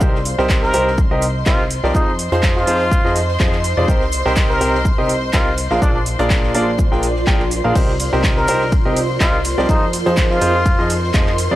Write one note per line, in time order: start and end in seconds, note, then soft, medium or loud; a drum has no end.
0.01 0.36 C2 loud
0.01 0.15 C3 medium
0.01 0.15 C4 medium
0.01 0.15 D#4 medium
0.01 0.15 G4 medium
0.01 0.15 A#4 medium
0.01 7.74 C5 medium
0.01 7.74 C6 medium
0.01 kick loud
0.01 shaker medium
0.15 snare soft
0.25 5.58 D#5 medium
0.25 open hi-hat loud
0.25 shaker medium
0.38 0.72 C2 loud
0.38 0.71 C3 loud
0.38 0.71 C4 medium
0.38 0.71 D#4 medium
0.38 0.71 G4 medium
0.38 0.71 A#4 medium
0.38 0.71 C5 loud
0.38 snare medium
0.49 kick loud
0.49 snare loud
0.49 clap loud
0.49 shaker loud
0.63 0.98 A#4 medium
0.63 snare soft
0.74 1.09 C2 loud
0.74 0.88 C3 loud
0.74 0.88 C4 medium
0.74 0.88 D#4 medium
0.74 0.88 G4 medium
0.74 0.88 A#4 medium
0.74 0.88 C5 loud
0.74 open hi-hat loud
0.74 shaker medium
0.87 snare medium
0.98 kick loud
0.98 shaker medium
1.11 1.44 C2 loud
1.11 1.23 C3 medium
1.11 1.23 C4 medium
1.11 1.23 D#4 medium
1.11 1.23 G4 medium
1.11 1.23 A#4 medium
1.11 1.23 D#5 medium
1.22 open hi-hat loud
1.22 shaker medium
1.46 1.81 C2 medium
1.46 1.60 C3 medium
1.46 1.60 C4 medium
1.46 1.60 D#4 medium
1.46 1.64 F4 medium
1.46 1.60 G4 medium
1.46 1.60 A#4 medium
1.46 1.60 D#5 loud
1.46 kick loud
1.46 snare loud
1.46 clap loud
1.46 shaker medium
1.70 open hi-hat loud
1.70 shaker medium
1.84 1.93 C2 loud
1.84 1.92 F3 medium
1.84 1.92 C4 medium
1.84 1.92 D#4 medium
1.84 1.92 G4 medium
1.84 1.92 A#4 medium
1.84 1.92 D5 medium
1.84 snare medium
1.95 2.29 F2 loud
1.95 2.09 F3 medium
1.95 2.09 C4 medium
1.95 2.09 D#4 medium
1.95 2.13 D#4 medium
1.95 2.09 F4 medium
1.95 2.09 G#4 medium
1.95 2.09 C5 medium
1.95 kick loud
1.95 shaker medium
2.19 open hi-hat loud
2.19 shaker medium
2.32 2.65 F2 loud
2.32 2.65 F3 loud
2.32 2.65 C4 medium
2.32 2.65 D#4 medium
2.32 2.65 F4 medium
2.32 2.65 G#4 medium
2.32 2.65 C5 loud
2.32 closed hi-hat soft
2.43 kick loud
2.43 snare loud
2.43 clap loud
2.43 shaker medium
2.56 3.24 F4 loud
2.56 snare soft
2.67 3.02 F2 medium
2.67 2.81 F3 medium
2.67 2.81 C4 medium
2.67 2.81 D#4 medium
2.67 2.81 F4 medium
2.67 2.81 G#4 medium
2.67 2.81 C5 loud
2.67 open hi-hat loud
2.67 shaker medium
2.91 kick loud
2.91 shaker medium
3.05 3.38 F2 loud
3.05 3.17 F3 medium
3.05 3.17 C4 medium
3.05 3.17 D#4 medium
3.05 3.17 F4 medium
3.05 3.17 G#4 medium
3.05 3.17 D#5 medium
3.05 snare soft
3.15 snare medium
3.15 open hi-hat loud
3.15 shaker medium
3.28 snare soft
3.40 3.75 F2 loud
3.40 3.54 F3 medium
3.40 3.54 C4 medium
3.40 3.54 D#4 medium
3.40 3.54 F4 medium
3.40 3.54 G#4 medium
3.40 3.54 D#5 loud
3.40 kick loud
3.40 snare loud
3.40 clap loud
3.40 shaker medium
3.53 clap soft
3.64 open hi-hat loud
3.64 shaker medium
3.77 3.86 F2 loud
3.77 3.86 C3 medium
3.77 3.86 C4 medium
3.77 3.86 D#4 medium
3.77 3.86 F4 medium
3.77 3.86 G#4 medium
3.77 3.86 D5 medium
3.88 4.23 C2 loud
3.88 4.02 C3 medium
3.88 4.02 C4 medium
3.88 4.02 D#4 medium
3.88 4.02 G4 medium
3.88 4.02 A#4 medium
3.88 4.02 C5 loud
3.88 kick loud
3.88 shaker medium
4.01 snare soft
4.12 open hi-hat loud
4.12 shaker medium
4.26 4.59 C2 loud
4.26 4.58 C3 loud
4.26 4.58 C4 medium
4.26 4.58 D#4 medium
4.26 4.58 G4 medium
4.26 4.58 A#4 medium
4.26 4.58 C5 loud
4.26 snare medium
4.36 kick loud
4.36 snare loud
4.36 clap loud
4.36 shaker medium
4.50 4.85 A#4 medium
4.50 snare medium
4.61 4.96 C2 loud
4.61 4.75 C3 loud
4.61 4.75 C4 medium
4.61 4.75 D#4 medium
4.61 4.75 G4 medium
4.61 4.75 A#4 medium
4.61 4.75 C5 loud
4.61 open hi-hat loud
4.61 shaker medium
4.75 snare medium
4.85 kick loud
4.85 shaker medium
4.98 5.31 C2 medium
4.98 5.10 C3 medium
4.98 5.10 C4 medium
4.98 5.10 D#4 medium
4.98 5.10 G4 medium
4.98 5.10 A#4 medium
4.98 5.10 D#5 medium
5.09 open hi-hat loud
5.09 shaker medium
5.33 5.68 C2 loud
5.33 5.47 C4 medium
5.33 5.47 D#4 medium
5.33 5.51 F4 medium
5.33 5.47 G4 medium
5.33 5.47 A#4 medium
5.33 5.47 D#5 loud
5.33 kick loud
5.33 snare loud
5.33 clap loud
5.33 shaker medium
5.58 11.55 F4 medium
5.58 open hi-hat loud
5.58 shaker medium
5.70 5.80 A#1 medium
5.70 5.79 A#2 medium
5.70 5.79 D4 medium
5.70 5.79 F4 medium
5.70 5.79 G#4 medium
5.70 5.79 A#4 medium
5.70 9.69 D5 loud
5.70 5.79 F5 loud
5.70 snare medium
5.75 11.55 A#4 medium
5.82 6.17 A#1 loud
5.82 5.96 A#2 medium
5.82 5.90 D4 medium
5.82 5.96 D4 medium
5.82 5.96 F4 medium
5.82 5.96 G#4 medium
5.82 5.96 A#4 medium
5.82 5.96 D5 loud
5.82 kick loud
5.82 shaker loud
5.95 6.02 D4 medium
6.06 open hi-hat loud
6.06 shaker medium
6.19 6.52 A#1 medium
6.19 6.52 A#2 medium
6.19 6.52 D4 medium
6.19 6.52 F4 medium
6.19 6.52 G#4 medium
6.19 6.52 A#4 medium
6.19 6.52 D5 loud
6.19 closed hi-hat soft
6.30 kick loud
6.30 snare loud
6.30 clap loud
6.30 shaker medium
6.43 snare soft
6.54 6.89 A#1 loud
6.54 6.68 A#2 loud
6.54 6.68 D4 medium
6.54 6.68 F4 medium
6.54 6.68 G#4 medium
6.54 6.68 A#4 medium
6.54 6.68 D5 loud
6.54 open hi-hat loud
6.54 shaker medium
6.79 kick loud
6.79 shaker medium
6.92 7.25 A#1 loud
6.92 7.04 A#2 medium
6.92 7.04 D4 medium
6.92 7.04 F4 medium
6.92 7.04 G#4 medium
6.92 7.04 A#4 medium
6.92 7.04 G5 medium
6.92 snare soft
7.02 snare soft
7.02 open hi-hat loud
7.02 shaker medium
7.16 snare soft
7.27 7.62 A#1 loud
7.27 7.41 A#2 medium
7.27 7.41 D4 medium
7.27 7.41 F4 medium
7.27 7.41 G#4 medium
7.27 7.41 A#4 medium
7.27 7.41 G5 loud
7.27 kick loud
7.27 clap loud
7.40 clap soft
7.51 open hi-hat loud
7.51 shaker medium
7.64 7.73 A#1 loud
7.64 7.73 D4 medium
7.64 7.73 F4 medium
7.64 7.73 G#4 medium
7.64 7.73 A#4 medium
7.64 7.73 F5 medium
7.75 8.10 C2 loud
7.75 7.89 C3 medium
7.75 7.89 C4 medium
7.75 7.89 D#4 medium
7.75 7.89 G4 medium
7.75 7.89 A#4 medium
7.75 7.89 C5 loud
7.75 11.55 C5 medium
7.75 11.55 C6 medium
7.75 kick loud
7.75 crash medium
7.75 ride medium
7.75 shaker medium
7.89 snare soft
8.00 open hi-hat loud
8.00 ride medium
8.00 shaker medium
8.12 8.46 C2 loud
8.12 8.45 C3 medium
8.12 8.45 C4 medium
8.12 8.45 D#4 medium
8.12 8.45 G4 medium
8.12 8.45 A#4 medium
8.12 8.45 C5 loud
8.12 snare soft
8.24 kick loud
8.24 snare loud
8.24 clap loud
8.24 ride medium
8.24 shaker loud
8.37 8.72 A#4 medium
8.37 snare soft
8.47 8.83 C2 medium
8.47 8.62 C3 medium
8.47 8.62 C4 medium
8.47 8.62 D#4 medium
8.47 8.62 G4 medium
8.47 8.62 A#4 medium
8.47 8.62 C5 loud
8.47 open hi-hat loud
8.47 ride medium
8.47 shaker medium
8.61 snare medium
8.72 kick loud
8.72 ride medium
8.72 shaker medium
8.85 9.19 C2 loud
8.85 8.97 C3 medium
8.85 8.97 C4 medium
8.85 8.97 D#4 medium
8.85 8.97 G4 medium
8.85 8.97 A#4 medium
8.85 8.97 D#5 medium
8.96 open hi-hat loud
8.96 ride medium
8.96 shaker medium
9.20 9.55 C2 loud
9.20 9.34 C3 medium
9.20 9.34 C4 medium
9.20 9.34 D#4 medium
9.20 9.39 F4 loud
9.20 9.34 G4 medium
9.20 9.34 A#4 medium
9.20 9.34 D#5 loud
9.20 kick loud
9.20 snare loud
9.20 clap loud
9.20 ride medium
9.20 shaker medium
9.44 open hi-hat loud
9.44 ride medium
9.44 shaker medium
9.58 9.67 C2 loud
9.58 9.66 F3 medium
9.58 9.66 C4 medium
9.58 9.66 D#4 medium
9.58 9.66 G4 medium
9.58 9.66 A#4 medium
9.58 9.66 D5 loud
9.58 snare medium
9.69 10.04 F2 loud
9.69 9.83 F3 medium
9.69 9.83 C4 medium
9.69 9.83 D#4 medium
9.69 9.87 D#4 medium
9.69 9.83 F4 medium
9.69 9.83 G#4 medium
9.69 9.83 C5 loud
9.69 kick loud
9.69 ride medium
9.69 shaker medium
9.93 open hi-hat loud
9.93 ride medium
9.93 shaker medium
10.06 10.39 F2 loud
10.06 10.39 F3 loud
10.06 10.39 C4 medium
10.06 10.39 D#4 medium
10.06 10.39 F4 medium
10.06 10.39 G#4 medium
10.06 10.39 C5 loud
10.06 closed hi-hat soft
10.17 kick loud
10.17 snare loud
10.17 clap loud
10.17 ride medium
10.17 shaker loud
10.30 10.98 F4 loud
10.30 11.55 D#5 medium
10.30 snare soft
10.41 10.76 F2 medium
10.41 10.55 F3 medium
10.41 10.55 C4 medium
10.41 10.55 D#4 medium
10.41 10.55 F4 medium
10.41 10.55 G#4 medium
10.41 10.55 C5 loud
10.41 open hi-hat loud
10.41 ride medium
10.41 shaker medium
10.66 kick loud
10.66 ride medium
10.66 shaker medium
10.79 11.12 F2 loud
10.79 10.91 F3 medium
10.79 10.91 C4 medium
10.79 10.91 D#4 medium
10.79 10.91 F4 medium
10.79 10.91 G#4 medium
10.79 10.91 D#5 loud
10.79 snare soft
10.90 snare medium
10.90 open hi-hat loud
10.90 ride medium
10.90 shaker medium
11.04 snare soft
11.14 11.49 F2 loud
11.14 11.28 F3 medium
11.14 11.28 C4 medium
11.14 11.28 D#4 medium
11.14 11.28 F4 medium
11.14 11.28 G#4 medium
11.14 11.28 D#5 loud
11.14 kick loud
11.14 snare loud
11.14 clap loud
11.14 ride medium
11.14 shaker loud
11.27 clap soft
11.38 open hi-hat loud
11.38 ride medium
11.38 shaker medium
11.51 11.55 F2 loud
11.51 11.55 C3 medium
11.51 11.55 C4 medium
11.51 11.55 D#4 medium
11.51 11.55 F4 medium
11.51 11.55 G#4 medium
11.51 11.55 D5 loud